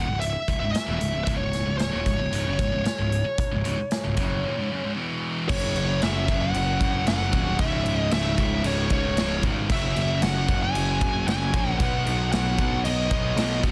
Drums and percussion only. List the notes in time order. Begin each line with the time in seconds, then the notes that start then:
0.21 closed hi-hat
0.48 kick, closed hi-hat
0.75 snare, closed hi-hat
1.01 closed hi-hat
1.27 kick, closed hi-hat
1.53 snare, closed hi-hat
1.79 snare, closed hi-hat
2.06 kick, closed hi-hat
2.33 closed hi-hat
2.59 kick, closed hi-hat
2.85 snare, closed hi-hat
3.12 closed hi-hat
3.38 kick, closed hi-hat
3.65 closed hi-hat
3.91 snare, closed hi-hat
4.17 kick, closed hi-hat
5.49 kick, crash
5.76 crash
6.02 snare, crash
6.28 kick, crash
6.54 crash
6.81 kick, crash
7.07 snare, crash
7.33 kick, crash
7.59 kick, crash
7.86 crash
8.11 snare, crash
8.38 kick, crash
8.64 crash
8.90 kick, crash
9.17 snare, crash
9.43 kick, crash
9.70 kick, crash
9.96 crash
10.22 snare, crash
10.48 kick, crash
10.75 crash
11.01 kick, crash
11.28 snare, crash
11.54 kick, crash
11.80 kick, crash
12.07 crash
12.32 snare, crash
12.59 kick, crash
12.85 crash
13.11 kick, crash
13.37 snare, crash
13.63 kick, crash